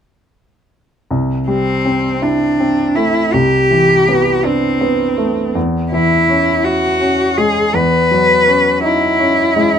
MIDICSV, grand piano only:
0, 0, Header, 1, 2, 480
1, 0, Start_track
1, 0, Tempo, 744417
1, 717, Time_signature, 6, 3, 24, 8
1, 3110, Tempo, 726392
1, 6391, End_track
2, 0, Start_track
2, 0, Title_t, "Grand piano"
2, 0, Program_c, 0, 0
2, 713, Note_on_c, 0, 36, 36
2, 831, Control_c, 0, 64, 127
2, 953, Note_on_c, 0, 55, 28
2, 1196, Note_on_c, 0, 60, 29
2, 1339, Note_off_c, 0, 55, 0
2, 1431, Note_on_c, 0, 64, 29
2, 1581, Note_off_c, 0, 60, 0
2, 1676, Note_on_c, 0, 60, 27
2, 1817, Note_off_c, 0, 64, 0
2, 1915, Note_on_c, 0, 57, 28
2, 2058, Note_off_c, 0, 60, 0
2, 2125, Note_off_c, 0, 36, 0
2, 2152, Note_on_c, 0, 36, 33
2, 2153, Note_off_c, 0, 57, 0
2, 2163, Control_c, 0, 64, 0
2, 2269, Control_c, 0, 64, 127
2, 2391, Note_on_c, 0, 52, 27
2, 2634, Note_on_c, 0, 59, 29
2, 2777, Note_off_c, 0, 52, 0
2, 2864, Note_on_c, 0, 62, 31
2, 3017, Note_off_c, 0, 59, 0
2, 3102, Note_on_c, 0, 59, 27
2, 3250, Note_off_c, 0, 62, 0
2, 3345, Note_on_c, 0, 57, 28
2, 3492, Note_off_c, 0, 59, 0
2, 3566, Note_off_c, 0, 36, 0
2, 3590, Note_off_c, 0, 57, 0
2, 3590, Note_on_c, 0, 40, 36
2, 3606, Control_c, 0, 64, 0
2, 3722, Control_c, 0, 64, 127
2, 3836, Note_on_c, 0, 52, 29
2, 4080, Note_on_c, 0, 61, 31
2, 4220, Note_off_c, 0, 52, 0
2, 4312, Note_on_c, 0, 64, 31
2, 4462, Note_off_c, 0, 61, 0
2, 4552, Note_on_c, 0, 61, 30
2, 4698, Note_off_c, 0, 64, 0
2, 4799, Note_on_c, 0, 56, 31
2, 4939, Note_off_c, 0, 61, 0
2, 5008, Note_off_c, 0, 40, 0
2, 5037, Note_on_c, 0, 40, 38
2, 5038, Note_off_c, 0, 56, 0
2, 5049, Control_c, 0, 64, 0
2, 5175, Control_c, 0, 64, 127
2, 5283, Note_on_c, 0, 54, 32
2, 5522, Note_on_c, 0, 61, 32
2, 5667, Note_off_c, 0, 54, 0
2, 5764, Note_on_c, 0, 63, 35
2, 5904, Note_off_c, 0, 61, 0
2, 5999, Note_on_c, 0, 61, 34
2, 6142, Note_off_c, 0, 63, 0
2, 6242, Note_on_c, 0, 56, 34
2, 6376, Note_off_c, 0, 61, 0
2, 6391, Note_off_c, 0, 40, 0
2, 6391, Note_off_c, 0, 56, 0
2, 6391, End_track
0, 0, End_of_file